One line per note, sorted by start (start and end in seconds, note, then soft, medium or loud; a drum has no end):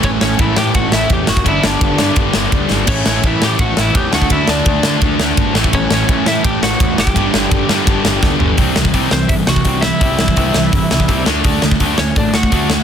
0.00 0.16 A1 loud
0.00 0.36 A2 medium
0.00 0.38 E3 loud
0.00 0.39 A3 loud
0.00 0.39 C#4 loud
0.00 1.28 C#4 medium
0.00 0.39 E4 loud
0.00 1.28 E4 loud
0.00 kick loud
0.00 ride medium
0.05 0.11 C#4 medium
0.05 0.10 C#5 loud
0.21 0.34 A1 medium
0.21 0.39 C#4 medium
0.21 0.40 C#5 medium
0.21 snare loud
0.37 0.51 A1 loud
0.37 1.26 A2 medium
0.37 1.27 E3 medium
0.37 1.28 A3 medium
0.37 1.28 C#4 medium
0.37 0.56 E4 medium
0.37 1.28 E4 medium
0.37 0.58 E5 loud
0.37 kick loud
0.37 ride medium
0.57 0.69 A2 medium
0.57 0.74 G4 medium
0.57 0.75 G5 loud
0.57 snare loud
0.74 0.87 A1 loud
0.74 0.92 F#4 medium
0.74 0.93 F#5 loud
0.74 kick loud
0.74 ride medium
0.92 1.04 A1 medium
0.92 1.10 E4 medium
0.92 1.13 E5 medium
0.92 snare loud
1.10 1.22 E2 loud
1.10 1.28 G4 medium
1.10 1.30 G5 loud
1.10 kick loud
1.10 ride medium
1.27 1.40 F#1 loud
1.27 1.45 F#4 medium
1.27 1.49 F#5 medium
1.27 snare loud
1.37 kick medium
1.44 1.58 G1 medium
1.44 1.97 G2 loud
1.44 1.98 D3 loud
1.44 1.97 G3 loud
1.44 1.97 B3 loud
1.44 2.88 B3 loud
1.44 1.96 D4 loud
1.44 2.88 D4 loud
1.44 1.64 E4 medium
1.44 kick medium
1.44 ride medium
1.49 1.66 E5 loud
1.63 1.76 G1 medium
1.63 2.14 D4 medium
1.63 2.18 D5 medium
1.63 snare loud
1.81 1.93 G1 loud
1.81 kick loud
1.81 ride medium
1.98 2.11 G2 medium
1.98 2.87 D3 medium
1.98 2.87 G3 medium
1.98 2.87 B3 medium
1.98 2.86 D4 loud
1.98 snare loud
2.02 2.88 G2 medium
2.16 2.29 G1 medium
2.16 kick loud
2.16 ride medium
2.33 2.46 G1 medium
2.33 snare loud
2.52 2.64 D2 medium
2.52 kick loud
2.52 ride medium
2.70 2.82 G#1 medium
2.70 snare medium
2.87 3.00 A1 medium
2.87 3.40 A2 medium
2.87 3.41 E3 loud
2.87 3.40 A3 loud
2.87 3.40 C#4 loud
2.87 4.12 C#4 medium
2.87 3.05 C#4 medium
2.87 3.39 E4 loud
2.87 4.13 E4 loud
2.87 3.07 C#5 loud
2.87 kick loud
2.87 crash loud
2.87 ride medium
3.06 3.18 A1 medium
3.06 3.24 C#4 medium
3.06 3.27 C#5 medium
3.06 snare loud
3.23 3.35 A1 medium
3.23 3.42 E4 medium
3.23 3.43 E5 loud
3.23 kick loud
3.23 ride medium
3.40 3.54 A2 medium
3.40 4.11 A2 medium
3.40 4.12 E3 medium
3.40 4.13 A3 medium
3.40 4.11 C#4 medium
3.40 4.11 E4 medium
3.40 3.60 G5 loud
3.40 snare loud
3.44 3.60 G4 medium
3.59 3.71 A1 medium
3.59 3.77 F#4 medium
3.59 3.79 F#5 loud
3.59 kick loud
3.59 ride medium
3.77 3.89 A1 medium
3.77 3.95 E4 medium
3.77 3.96 E5 medium
3.77 snare loud
3.95 4.07 E2 medium
3.95 4.12 G4 medium
3.95 4.14 G5 loud
3.95 kick loud
3.95 ride medium
4.11 4.25 D2 loud
4.11 4.64 D3 loud
4.11 4.67 A3 loud
4.11 4.66 D4 loud
4.11 4.66 F#4 loud
4.11 4.30 F#4 medium
4.11 5.55 F#4 loud
4.11 4.32 F#5 medium
4.11 snare loud
4.22 kick medium
4.30 4.42 D2 loud
4.30 4.48 E4 medium
4.30 4.50 E5 loud
4.30 kick loud
4.30 ride medium
4.48 4.60 D2 medium
4.48 4.99 D4 medium
4.48 4.99 D5 medium
4.48 snare loud
4.66 4.78 D2 loud
4.66 5.53 D3 medium
4.66 5.55 A3 medium
4.66 5.56 D4 medium
4.66 5.55 F#4 loud
4.66 kick loud
4.66 ride medium
4.83 4.96 D3 medium
4.83 snare loud
5.01 5.14 D2 loud
5.01 kick loud
5.01 ride medium
5.19 5.31 D2 medium
5.19 snare loud
5.37 5.55 G1 loud
5.37 kick loud
5.37 ride medium
5.54 5.67 A1 loud
5.54 6.06 A2 loud
5.54 6.08 E3 loud
5.54 6.09 A3 loud
5.54 6.08 C#4 loud
5.54 6.97 C#4 loud
5.54 6.08 E4 loud
5.54 6.98 E4 loud
5.54 snare loud
5.64 kick medium
5.73 5.85 A1 loud
5.73 5.90 C#4 medium
5.73 5.92 C#5 medium
5.73 kick medium
5.73 ride medium
5.90 6.02 A1 medium
5.90 6.25 C#4 medium
5.90 6.29 C#5 loud
5.90 snare loud
6.07 6.21 A1 loud
6.07 6.96 A2 medium
6.07 6.97 E3 medium
6.07 6.98 A3 medium
6.07 6.97 C#4 medium
6.07 6.98 E4 medium
6.07 kick loud
6.07 ride medium
6.26 6.38 A2 medium
6.26 6.44 E4 medium
6.26 6.45 E5 loud
6.26 snare loud
6.44 6.56 A1 loud
6.44 6.61 G4 medium
6.44 6.63 G5 loud
6.44 kick loud
6.44 ride medium
6.62 6.74 A1 medium
6.62 6.96 F#4 medium
6.62 6.99 F#5 loud
6.62 snare loud
6.80 6.92 E2 loud
6.80 kick loud
6.80 ride medium
6.98 7.10 F#1 medium
6.98 8.20 G4 medium
6.98 8.20 G5 loud
6.98 snare loud
7.07 kick medium
7.15 7.28 G1 medium
7.15 7.68 G2 medium
7.15 7.69 D3 loud
7.15 7.67 G3 loud
7.15 7.69 B3 loud
7.15 8.58 B3 loud
7.15 7.68 D4 loud
7.15 8.58 D4 loud
7.15 kick loud
7.15 ride medium
7.34 7.46 G1 medium
7.34 snare loud
7.51 7.63 G1 medium
7.51 kick loud
7.51 ride medium
7.68 7.81 G2 medium
7.68 8.59 G2 medium
7.68 8.58 D3 medium
7.68 8.57 G3 medium
7.68 8.58 B3 medium
7.68 8.58 D4 medium
7.68 snare loud
7.87 7.99 G1 loud
7.87 kick loud
7.87 ride medium
8.04 8.16 G1 loud
8.04 snare loud
8.23 8.35 D2 medium
8.23 kick loud
8.23 snare medium
8.40 8.52 G1 medium
8.40 floor tom medium
8.58 8.71 C2 medium
8.58 8.74 C3 medium
8.58 8.74 E3 loud
8.58 9.82 E3 medium
8.58 8.75 G3 medium
8.58 8.76 C4 loud
8.58 9.81 E4 loud
8.58 kick loud
8.58 open hi-hat medium
8.76 8.89 C2 medium
8.76 8.92 C3 medium
8.76 8.92 E3 medium
8.76 8.92 G3 medium
8.76 snare loud
8.85 kick medium
8.94 9.07 C2 medium
8.94 9.10 C3 medium
8.94 9.10 E3 medium
8.94 9.11 G3 medium
8.94 9.11 C4 loud
8.94 kick medium
8.94 open hi-hat medium
9.11 9.25 C2 medium
9.11 9.28 C3 medium
9.11 9.28 E3 medium
9.11 9.28 G3 medium
9.11 9.29 C4 medium
9.11 9.31 C5 medium
9.11 snare loud
9.28 9.42 G1 medium
9.28 9.46 C3 medium
9.28 9.46 E3 medium
9.28 9.46 G3 medium
9.28 9.34 E4 medium
9.28 9.33 E5 loud
9.28 kick loud
9.28 open hi-hat medium
9.47 9.61 C2 medium
9.47 9.63 C3 medium
9.47 9.63 E3 medium
9.47 9.64 G3 medium
9.47 9.82 F#4 medium
9.47 9.81 F#5 loud
9.47 snare loud
9.56 kick medium
9.65 9.91 C2 medium
9.65 9.81 C3 loud
9.65 9.82 E3 medium
9.65 9.81 G3 loud
9.65 9.83 C4 loud
9.65 kick medium
9.65 open hi-hat medium
9.81 9.99 C3 medium
9.81 10.00 E3 medium
9.81 9.99 E3 medium
9.81 9.99 G3 medium
9.81 10.00 C4 medium
9.81 10.00 E4 medium
9.81 11.23 E4 medium
9.81 11.22 E5 medium
9.81 snare loud
10.00 10.14 C2 medium
10.00 10.17 C3 medium
10.00 11.25 E3 medium
10.00 10.18 E3 medium
10.00 10.17 G3 loud
10.00 10.18 C4 medium
10.00 11.26 E4 loud
10.00 kick loud
10.00 open hi-hat medium
10.18 10.32 C2 medium
10.18 10.35 C3 medium
10.18 10.35 E3 medium
10.18 10.35 G3 medium
10.18 snare loud
10.28 kick medium
10.36 10.50 C2 loud
10.36 10.53 C3 medium
10.36 10.53 E3 medium
10.36 10.53 G3 medium
10.36 10.54 C4 loud
10.36 kick medium
10.36 open hi-hat medium
10.54 10.67 C2 medium
10.54 10.71 C3 medium
10.54 10.71 E3 medium
10.54 10.71 G3 medium
10.54 snare loud
10.72 10.86 G1 medium
10.72 10.89 C3 medium
10.72 10.89 E3 medium
10.72 10.89 G3 medium
10.72 kick loud
10.72 open hi-hat medium
10.91 11.04 C2 medium
10.91 11.07 C3 medium
10.91 11.07 E3 medium
10.91 11.07 G3 medium
10.91 snare loud
11.00 kick medium
11.08 11.22 C2 medium
11.08 11.25 C3 medium
11.08 11.26 E3 medium
11.08 11.26 G3 medium
11.08 11.26 C4 loud
11.08 kick medium
11.08 open hi-hat medium
11.26 11.40 D2 medium
11.26 11.42 D3 medium
11.26 11.43 A3 medium
11.26 11.44 D4 loud
11.26 12.51 F#4 loud
11.26 snare loud
11.44 11.58 D2 medium
11.44 11.61 D3 loud
11.44 11.61 A3 loud
11.44 11.62 D4 loud
11.44 kick loud
11.44 open hi-hat medium
11.62 11.76 D2 medium
11.62 11.79 D3 medium
11.62 11.79 A3 medium
11.62 snare loud
11.71 kick medium
11.80 11.93 D2 medium
11.80 11.96 D3 medium
11.80 11.96 A3 medium
11.80 11.98 D4 loud
11.80 kick medium
11.80 open hi-hat medium
11.98 12.11 D2 medium
11.98 12.14 D3 medium
11.98 12.14 A3 medium
11.98 12.16 C#4 medium
11.98 12.17 C#5 medium
11.98 snare loud
12.16 12.29 A1 medium
12.16 12.32 D3 medium
12.16 12.33 A3 medium
12.16 12.34 D4 medium
12.16 12.35 D5 loud
12.16 kick loud
12.16 open hi-hat medium
12.33 12.47 D2 medium
12.33 12.49 D3 medium
12.33 12.50 A3 medium
12.33 12.83 F#4 medium
12.33 12.83 F#5 loud
12.33 snare loud
12.43 kick medium
12.51 12.78 D2 loud
12.51 12.68 D3 loud
12.51 12.68 A3 loud
12.51 12.69 D4 loud
12.51 12.70 F#4 medium
12.51 kick medium
12.51 open hi-hat medium
12.69 12.83 D3 medium
12.69 12.83 A3 medium
12.69 12.83 D4 loud
12.69 12.83 F#4 loud
12.69 snare loud